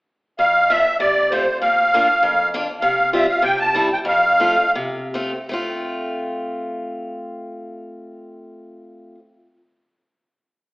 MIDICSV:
0, 0, Header, 1, 3, 480
1, 0, Start_track
1, 0, Key_signature, -1, "major"
1, 0, Tempo, 610376
1, 295, Time_signature, 2, 2, 24, 8
1, 2688, Tempo, 634921
1, 3168, Tempo, 692042
1, 3648, Tempo, 804290
1, 5568, Tempo, 828729
1, 7175, End_track
2, 0, Start_track
2, 0, Title_t, "Accordion"
2, 0, Program_c, 0, 21
2, 307, Note_on_c, 0, 77, 85
2, 548, Note_on_c, 0, 76, 92
2, 565, Note_off_c, 0, 77, 0
2, 763, Note_off_c, 0, 76, 0
2, 786, Note_on_c, 0, 74, 79
2, 1031, Note_on_c, 0, 72, 61
2, 1044, Note_off_c, 0, 74, 0
2, 1244, Note_off_c, 0, 72, 0
2, 1269, Note_on_c, 0, 77, 81
2, 1957, Note_off_c, 0, 77, 0
2, 2206, Note_on_c, 0, 77, 83
2, 2440, Note_off_c, 0, 77, 0
2, 2471, Note_on_c, 0, 76, 79
2, 2571, Note_off_c, 0, 76, 0
2, 2583, Note_on_c, 0, 77, 77
2, 2695, Note_off_c, 0, 77, 0
2, 2705, Note_on_c, 0, 79, 95
2, 2823, Note_off_c, 0, 79, 0
2, 2823, Note_on_c, 0, 81, 89
2, 3040, Note_off_c, 0, 81, 0
2, 3076, Note_on_c, 0, 79, 75
2, 3123, Note_off_c, 0, 79, 0
2, 3185, Note_on_c, 0, 77, 91
2, 3628, Note_off_c, 0, 77, 0
2, 7175, End_track
3, 0, Start_track
3, 0, Title_t, "Steel-string acoustic guitar"
3, 0, Program_c, 1, 25
3, 304, Note_on_c, 1, 41, 52
3, 550, Note_on_c, 1, 57, 52
3, 552, Note_on_c, 1, 60, 53
3, 559, Note_on_c, 1, 65, 48
3, 654, Note_off_c, 1, 57, 0
3, 656, Note_off_c, 1, 60, 0
3, 657, Note_off_c, 1, 65, 0
3, 667, Note_off_c, 1, 41, 0
3, 786, Note_on_c, 1, 48, 62
3, 1036, Note_on_c, 1, 57, 54
3, 1043, Note_on_c, 1, 60, 39
3, 1044, Note_on_c, 1, 65, 54
3, 1138, Note_off_c, 1, 57, 0
3, 1139, Note_off_c, 1, 60, 0
3, 1141, Note_off_c, 1, 65, 0
3, 1146, Note_off_c, 1, 48, 0
3, 1271, Note_on_c, 1, 46, 51
3, 1527, Note_on_c, 1, 62, 48
3, 1528, Note_on_c, 1, 58, 59
3, 1534, Note_on_c, 1, 65, 54
3, 1621, Note_off_c, 1, 62, 0
3, 1622, Note_off_c, 1, 58, 0
3, 1623, Note_off_c, 1, 65, 0
3, 1625, Note_off_c, 1, 46, 0
3, 1752, Note_on_c, 1, 41, 66
3, 1998, Note_on_c, 1, 58, 57
3, 2001, Note_on_c, 1, 62, 50
3, 2007, Note_on_c, 1, 65, 62
3, 2092, Note_off_c, 1, 58, 0
3, 2094, Note_off_c, 1, 62, 0
3, 2095, Note_off_c, 1, 65, 0
3, 2100, Note_off_c, 1, 41, 0
3, 2219, Note_on_c, 1, 48, 57
3, 2463, Note_on_c, 1, 65, 62
3, 2464, Note_on_c, 1, 60, 50
3, 2470, Note_on_c, 1, 55, 44
3, 2563, Note_off_c, 1, 60, 0
3, 2564, Note_off_c, 1, 55, 0
3, 2564, Note_off_c, 1, 65, 0
3, 2574, Note_off_c, 1, 48, 0
3, 2692, Note_on_c, 1, 48, 66
3, 2937, Note_on_c, 1, 55, 56
3, 2943, Note_on_c, 1, 60, 44
3, 2944, Note_on_c, 1, 64, 58
3, 3041, Note_off_c, 1, 55, 0
3, 3041, Note_off_c, 1, 60, 0
3, 3043, Note_off_c, 1, 64, 0
3, 3049, Note_off_c, 1, 48, 0
3, 3165, Note_on_c, 1, 41, 64
3, 3407, Note_on_c, 1, 57, 51
3, 3411, Note_on_c, 1, 60, 43
3, 3414, Note_on_c, 1, 65, 69
3, 3514, Note_off_c, 1, 57, 0
3, 3515, Note_off_c, 1, 60, 0
3, 3517, Note_off_c, 1, 65, 0
3, 3524, Note_off_c, 1, 41, 0
3, 3653, Note_on_c, 1, 48, 60
3, 3884, Note_on_c, 1, 57, 55
3, 3889, Note_on_c, 1, 60, 55
3, 3891, Note_on_c, 1, 65, 57
3, 3986, Note_off_c, 1, 57, 0
3, 3987, Note_off_c, 1, 65, 0
3, 3988, Note_off_c, 1, 60, 0
3, 3999, Note_off_c, 1, 48, 0
3, 4093, Note_on_c, 1, 57, 61
3, 4107, Note_on_c, 1, 60, 56
3, 4119, Note_on_c, 1, 65, 68
3, 6253, Note_off_c, 1, 57, 0
3, 6267, Note_off_c, 1, 60, 0
3, 6278, Note_off_c, 1, 65, 0
3, 7175, End_track
0, 0, End_of_file